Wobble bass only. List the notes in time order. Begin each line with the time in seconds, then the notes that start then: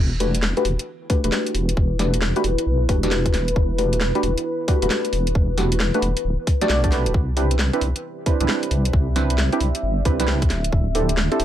Already playing: E1
0.65 E1
1.24 E1
1.55 E1
1.77 E1
2.44 E1
2.66 B1
2.89 E1
3.34 E1
3.56 E1
4.23 E1
4.82 E1
5.13 E1
5.35 E1
6.02 E1
6.25 D1
6.70 B1
7.06 D1
7.14 C2
7.81 C2
8.41 C2
8.71 C2
8.93 C2
9.61 C2
9.83 G1
10.05 C2
10.50 D1
10.73 D1
11.40 D1